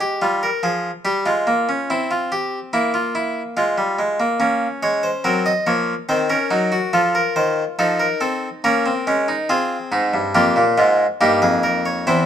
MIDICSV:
0, 0, Header, 1, 2, 480
1, 0, Start_track
1, 0, Tempo, 840336
1, 1081, Time_signature, 3, 2, 24, 8
1, 3959, Tempo, 857143
1, 6943, End_track
2, 0, Start_track
2, 0, Title_t, "Harpsichord"
2, 0, Program_c, 0, 6
2, 0, Note_on_c, 0, 56, 55
2, 3, Note_on_c, 0, 67, 70
2, 107, Note_off_c, 0, 56, 0
2, 118, Note_off_c, 0, 67, 0
2, 123, Note_on_c, 0, 65, 69
2, 124, Note_on_c, 0, 55, 60
2, 238, Note_off_c, 0, 65, 0
2, 246, Note_on_c, 0, 70, 60
2, 272, Note_off_c, 0, 55, 0
2, 359, Note_off_c, 0, 70, 0
2, 360, Note_on_c, 0, 53, 53
2, 362, Note_on_c, 0, 68, 62
2, 509, Note_off_c, 0, 53, 0
2, 510, Note_off_c, 0, 68, 0
2, 598, Note_on_c, 0, 55, 58
2, 599, Note_on_c, 0, 67, 73
2, 715, Note_off_c, 0, 55, 0
2, 716, Note_off_c, 0, 67, 0
2, 718, Note_on_c, 0, 65, 73
2, 719, Note_on_c, 0, 56, 59
2, 836, Note_off_c, 0, 56, 0
2, 840, Note_on_c, 0, 58, 65
2, 957, Note_off_c, 0, 58, 0
2, 964, Note_on_c, 0, 61, 60
2, 1069, Note_off_c, 0, 65, 0
2, 1079, Note_off_c, 0, 61, 0
2, 1086, Note_on_c, 0, 60, 57
2, 1086, Note_on_c, 0, 64, 69
2, 1200, Note_off_c, 0, 64, 0
2, 1204, Note_on_c, 0, 65, 64
2, 1319, Note_off_c, 0, 65, 0
2, 1325, Note_on_c, 0, 67, 77
2, 1471, Note_off_c, 0, 67, 0
2, 1548, Note_off_c, 0, 60, 0
2, 1561, Note_on_c, 0, 58, 64
2, 1561, Note_on_c, 0, 64, 69
2, 1675, Note_off_c, 0, 64, 0
2, 1679, Note_on_c, 0, 65, 66
2, 1794, Note_off_c, 0, 65, 0
2, 1799, Note_on_c, 0, 64, 65
2, 1946, Note_off_c, 0, 64, 0
2, 2021, Note_off_c, 0, 58, 0
2, 2038, Note_on_c, 0, 65, 79
2, 2039, Note_on_c, 0, 56, 66
2, 2152, Note_off_c, 0, 56, 0
2, 2157, Note_on_c, 0, 55, 58
2, 2271, Note_off_c, 0, 55, 0
2, 2277, Note_on_c, 0, 56, 56
2, 2391, Note_off_c, 0, 56, 0
2, 2397, Note_on_c, 0, 58, 58
2, 2499, Note_off_c, 0, 65, 0
2, 2505, Note_off_c, 0, 58, 0
2, 2512, Note_on_c, 0, 58, 60
2, 2513, Note_on_c, 0, 61, 61
2, 2661, Note_off_c, 0, 58, 0
2, 2757, Note_on_c, 0, 56, 65
2, 2757, Note_on_c, 0, 73, 89
2, 2872, Note_off_c, 0, 73, 0
2, 2874, Note_on_c, 0, 72, 77
2, 2905, Note_off_c, 0, 56, 0
2, 2980, Note_off_c, 0, 61, 0
2, 2991, Note_off_c, 0, 72, 0
2, 2995, Note_on_c, 0, 60, 67
2, 2996, Note_on_c, 0, 54, 62
2, 2996, Note_on_c, 0, 70, 84
2, 3112, Note_off_c, 0, 70, 0
2, 3118, Note_on_c, 0, 75, 80
2, 3144, Note_off_c, 0, 54, 0
2, 3144, Note_off_c, 0, 60, 0
2, 3233, Note_off_c, 0, 75, 0
2, 3236, Note_on_c, 0, 73, 63
2, 3237, Note_on_c, 0, 53, 54
2, 3237, Note_on_c, 0, 58, 56
2, 3385, Note_off_c, 0, 53, 0
2, 3385, Note_off_c, 0, 58, 0
2, 3385, Note_off_c, 0, 73, 0
2, 3477, Note_on_c, 0, 72, 80
2, 3478, Note_on_c, 0, 51, 66
2, 3478, Note_on_c, 0, 60, 67
2, 3593, Note_off_c, 0, 60, 0
2, 3593, Note_off_c, 0, 72, 0
2, 3596, Note_on_c, 0, 70, 79
2, 3597, Note_on_c, 0, 61, 62
2, 3626, Note_off_c, 0, 51, 0
2, 3713, Note_off_c, 0, 61, 0
2, 3716, Note_on_c, 0, 54, 70
2, 3716, Note_on_c, 0, 63, 64
2, 3833, Note_off_c, 0, 63, 0
2, 3838, Note_on_c, 0, 66, 69
2, 3866, Note_off_c, 0, 54, 0
2, 3946, Note_off_c, 0, 70, 0
2, 3954, Note_off_c, 0, 66, 0
2, 3960, Note_on_c, 0, 53, 69
2, 3960, Note_on_c, 0, 65, 61
2, 3960, Note_on_c, 0, 69, 70
2, 4074, Note_off_c, 0, 69, 0
2, 4081, Note_on_c, 0, 70, 78
2, 4107, Note_off_c, 0, 53, 0
2, 4194, Note_off_c, 0, 70, 0
2, 4200, Note_on_c, 0, 51, 71
2, 4200, Note_on_c, 0, 72, 85
2, 4346, Note_off_c, 0, 51, 0
2, 4346, Note_off_c, 0, 72, 0
2, 4420, Note_off_c, 0, 65, 0
2, 4439, Note_on_c, 0, 53, 67
2, 4440, Note_on_c, 0, 63, 72
2, 4440, Note_on_c, 0, 69, 89
2, 4552, Note_off_c, 0, 69, 0
2, 4555, Note_on_c, 0, 70, 73
2, 4585, Note_off_c, 0, 53, 0
2, 4669, Note_off_c, 0, 70, 0
2, 4673, Note_on_c, 0, 69, 65
2, 4675, Note_on_c, 0, 60, 66
2, 4822, Note_off_c, 0, 69, 0
2, 4823, Note_off_c, 0, 60, 0
2, 4901, Note_off_c, 0, 63, 0
2, 4917, Note_on_c, 0, 58, 78
2, 4917, Note_on_c, 0, 61, 84
2, 4917, Note_on_c, 0, 70, 86
2, 5031, Note_off_c, 0, 61, 0
2, 5038, Note_on_c, 0, 60, 66
2, 5065, Note_off_c, 0, 58, 0
2, 5152, Note_off_c, 0, 60, 0
2, 5158, Note_on_c, 0, 56, 71
2, 5159, Note_on_c, 0, 61, 66
2, 5273, Note_off_c, 0, 61, 0
2, 5276, Note_on_c, 0, 63, 66
2, 5305, Note_off_c, 0, 56, 0
2, 5382, Note_off_c, 0, 70, 0
2, 5391, Note_off_c, 0, 63, 0
2, 5394, Note_on_c, 0, 68, 77
2, 5395, Note_on_c, 0, 60, 77
2, 5395, Note_on_c, 0, 65, 78
2, 5543, Note_off_c, 0, 65, 0
2, 5631, Note_on_c, 0, 44, 87
2, 5633, Note_on_c, 0, 63, 71
2, 5748, Note_off_c, 0, 44, 0
2, 5754, Note_on_c, 0, 43, 88
2, 5781, Note_off_c, 0, 63, 0
2, 5858, Note_off_c, 0, 60, 0
2, 5858, Note_off_c, 0, 68, 0
2, 5869, Note_off_c, 0, 43, 0
2, 5871, Note_on_c, 0, 58, 82
2, 5872, Note_on_c, 0, 65, 83
2, 5872, Note_on_c, 0, 67, 73
2, 5873, Note_on_c, 0, 41, 79
2, 5989, Note_off_c, 0, 41, 0
2, 5993, Note_on_c, 0, 46, 87
2, 6021, Note_off_c, 0, 58, 0
2, 6021, Note_off_c, 0, 67, 0
2, 6105, Note_off_c, 0, 65, 0
2, 6110, Note_off_c, 0, 46, 0
2, 6112, Note_on_c, 0, 65, 61
2, 6113, Note_on_c, 0, 56, 54
2, 6114, Note_on_c, 0, 44, 73
2, 6262, Note_off_c, 0, 65, 0
2, 6263, Note_off_c, 0, 44, 0
2, 6263, Note_off_c, 0, 56, 0
2, 6354, Note_on_c, 0, 43, 90
2, 6354, Note_on_c, 0, 58, 84
2, 6354, Note_on_c, 0, 67, 75
2, 6355, Note_on_c, 0, 63, 84
2, 6472, Note_off_c, 0, 43, 0
2, 6472, Note_off_c, 0, 67, 0
2, 6473, Note_on_c, 0, 41, 86
2, 6473, Note_on_c, 0, 68, 76
2, 6591, Note_off_c, 0, 68, 0
2, 6592, Note_on_c, 0, 70, 68
2, 6711, Note_off_c, 0, 70, 0
2, 6717, Note_on_c, 0, 73, 66
2, 6821, Note_off_c, 0, 58, 0
2, 6822, Note_off_c, 0, 63, 0
2, 6824, Note_off_c, 0, 41, 0
2, 6833, Note_off_c, 0, 73, 0
2, 6837, Note_on_c, 0, 40, 84
2, 6837, Note_on_c, 0, 64, 69
2, 6838, Note_on_c, 0, 60, 70
2, 6838, Note_on_c, 0, 72, 70
2, 6943, Note_off_c, 0, 40, 0
2, 6943, Note_off_c, 0, 60, 0
2, 6943, Note_off_c, 0, 64, 0
2, 6943, Note_off_c, 0, 72, 0
2, 6943, End_track
0, 0, End_of_file